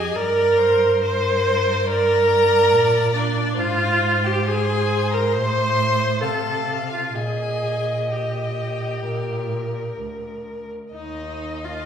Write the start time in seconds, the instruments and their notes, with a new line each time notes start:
Already playing: cello F2, viola G#4, violin D#5 G#5
0.15 cello G2, viola A#4, violin D5 A#5
0.58 violin C5
1.01 violin A#4 C6, viola C5
1.86 viola A#4, violin D5 A#5
2.27 violin D5
2.72 cello A#2
3.14 viola D4, violin D5
3.56 cello G#2, viola F4, violin C5 F5
4.24 viola G4, violin G5
4.45 viola G#4, violin G#5
5.11 viola A#4, violin A#5
5.32 cello A2, viola C5, violin C6
6.21 cello C3, viola A4, violin F5 A5
6.90 viola F4, violin F5
7.14 cello A#2, viola G#4, violin D#5 G#5
8.11 viola G4, violin G5
9.06 cello A#2, violin A#4
9.99 cello D2
10.93 cello D#2, viola D#4, violin D#5
11.64 viola F4, violin F5